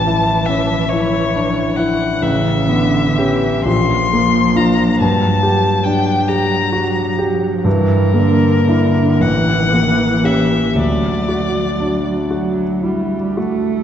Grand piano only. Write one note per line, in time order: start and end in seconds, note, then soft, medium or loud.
0.00 2.18 A1 soft
0.07 0.74 E4 soft
0.49 1.17 C#4 soft
0.93 1.61 E4 soft
1.36 1.78 D4 soft
1.78 2.22 E4 soft
2.22 3.62 A1 medium
2.68 3.47 B3 soft
3.18 3.62 C#4 soft
3.18 3.63 G4 soft
3.66 4.95 A#1 soft
4.13 4.83 A#3 soft
4.56 4.95 D4 soft
4.56 4.96 F4 soft
5.01 7.62 G2 soft
5.43 6.11 G4 soft
5.86 6.55 D4 soft
6.28 6.99 G4 soft
6.73 7.18 F#4 soft
7.19 7.65 G4 soft
7.64 9.17 G2 soft
8.14 9.00 A#3 soft
8.67 9.17 D4 soft
8.67 9.18 E4 soft
9.20 10.73 A1 soft
9.73 10.56 A#3 soft
10.24 10.73 C#4 soft
10.24 10.73 G4 soft
10.75 13.82 D2 soft
11.29 12.11 F#4 soft
11.80 12.63 D4 soft
12.31 13.15 F#4 soft
12.82 13.36 E4 soft
13.37 13.83 F#4 soft